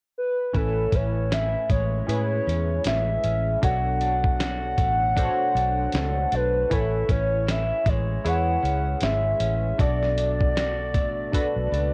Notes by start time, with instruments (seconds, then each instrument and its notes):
0.18 soft synth lead B4
0.53 fingered electric bass A1, clean electric guitar A2 E4, synth keys C#4 E4 B4 G#5, soft synth lead A4, kick, closed hi-hat
0.92 fingered electric bass A1, clean electric guitar C#4, soft synth lead C#5, kick, closed hi-hat
1.31 clean electric guitar E4, soft synth lead E5, snare, closed hi-hat
1.69 fingered electric bass A1, clean electric guitar G#3, soft synth lead C#5, kick, closed hi-hat
2.07 fingered electric bass A2, synth keys C#4 E4 G#4 B4, clean electric guitar E4, soft synth lead C#5, closed hi-hat
2.47 fingered electric bass E2, clean electric guitar C#4, closed hi-hat
2.84 fingered electric bass A1, clean electric guitar G#3, soft synth lead E5, snare, closed hi-hat
3.23 fingered electric bass A1, clean electric guitar C#4, closed hi-hat
3.62 fingered electric bass B1, clean electric guitar B2 F#4, synth keys D4 F#4 A4 C#5, soft synth lead F#5, kick, closed hi-hat
4.01 clean electric guitar D4, closed hi-hat
4.24 kick
4.39 clean electric guitar F#4, snare, closed hi-hat
4.78 fingered electric bass A1, clean electric guitar A3, kick, closed hi-hat
5.16 synth keys D4 F#4 A4 C5, clean electric guitar F#4, kick, closed hi-hat
5.25 synth keys C#5
5.55 fingered electric bass B1, clean electric guitar D4, closed hi-hat
5.93 fingered electric bass C#2, clean electric guitar A3, snare, closed hi-hat
6.32 fingered electric bass B1, clean electric guitar D4, soft synth lead B4, closed hi-hat
6.70 fingered electric bass A1, synth keys E4 B4 C#5 G#5, clean electric guitar E4, soft synth lead A4, kick, closed hi-hat
7.09 fingered electric bass A1, clean electric guitar C#4, soft synth lead C#5, kick, closed hi-hat
7.47 clean electric guitar E4, soft synth lead E5, snare, closed hi-hat
7.86 fingered electric bass A1, clean electric guitar G#3, soft synth lead C#5, kick, closed hi-hat
8.25 fingered electric bass E2, synth keys E4 G#4 B4 C#5, clean electric guitar E4, soft synth lead F#5, closed hi-hat
8.63 fingered electric bass C#2, clean electric guitar C#4, closed hi-hat
9.01 fingered electric bass G#1, clean electric guitar G#3, soft synth lead E5, snare, closed hi-hat
9.40 fingered electric bass A1, clean electric guitar C#4, closed hi-hat
9.78 fingered electric bass B1, clean electric guitar B2 F#4, synth keys D4 F#4 A4 D5, soft synth lead D5, kick, closed hi-hat
10.03 snare
10.17 clean electric guitar D4, closed hi-hat
10.41 kick
10.56 clean electric guitar F#4, snare, closed hi-hat
10.94 fingered electric bass A1, clean electric guitar A3, kick, closed hi-hat
11.32 synth keys D4 F#4 A4 B4, clean electric guitar F#4, kick, closed hi-hat
11.56 fingered electric bass B1
11.72 fingered electric bass C#2, clean electric guitar D4, closed hi-hat